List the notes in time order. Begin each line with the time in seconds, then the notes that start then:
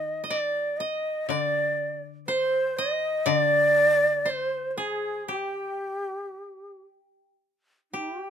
Already playing: D#3 D#5
0.24 D#5
0.28 D5
0.77 D#5
1.27 D3 D5
2.27 C5
2.77 D#5
3.26 D3 D5
4.25 C5 D5
4.30 C5
4.71 C5
4.78 G#4
5.28 G4
7.92 D#4 G4
8.24 G4